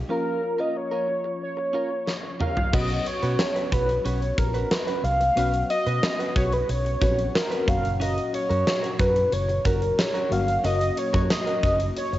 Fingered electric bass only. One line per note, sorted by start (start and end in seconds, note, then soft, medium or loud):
2.74 2.98 B1 medium
3.23 3.35 B2 medium
3.72 3.97 B1 medium
4.05 4.30 B1 medium
4.38 4.63 A#1 medium
5.04 5.29 C2 medium
5.37 5.62 B1 medium
5.86 5.99 B2 medium
6.36 6.61 B1 medium
6.69 6.94 B1 medium
7.02 7.27 A#1 medium
7.68 8.17 F#1 medium
8.50 8.63 F#2 medium
9.00 9.24 F#2 medium
9.33 9.58 F#1 medium
9.65 9.90 F#1 medium
10.31 10.56 G1 medium
10.64 10.89 F#1 medium
11.14 11.26 F#2 loud
11.63 11.88 F#1 medium
12.13 12.19 F#1 medium